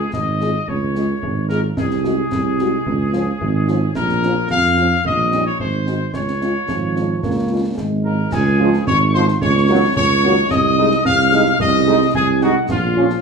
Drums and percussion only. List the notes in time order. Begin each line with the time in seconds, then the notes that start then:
0.13 concert bass drum, snare
0.41 snare
0.68 concert bass drum
0.95 snare
1.23 concert bass drum
1.50 snare
1.77 concert bass drum, snare
1.91 snare
2.05 snare
2.32 concert bass drum, snare
2.59 snare
2.86 concert bass drum
3.13 snare
3.41 concert bass drum
3.68 snare
3.95 concert bass drum, snare, crash
4.09 snare
4.23 snare
4.50 concert bass drum, snare
4.77 snare
5.05 concert bass drum
5.32 snare
5.60 concert bass drum
5.87 snare
6.14 concert bass drum, snare
6.28 snare
6.41 snare
6.68 concert bass drum, snare
6.96 snare
7.23 concert bass drum, snare
7.78 concert bass drum, snare
8.32 concert bass drum, snare, crash
8.74 snare
8.87 concert bass drum, snare
9.14 snare
9.28 snare
9.42 concert bass drum, snare
9.96 concert bass drum
10.24 snare
10.51 concert bass drum, snare
10.91 snare
11.05 concert bass drum, snare
11.32 snare
11.46 snare
11.60 concert bass drum, snare
12.14 concert bass drum
12.41 snare
12.69 concert bass drum, snare, crash
13.10 snare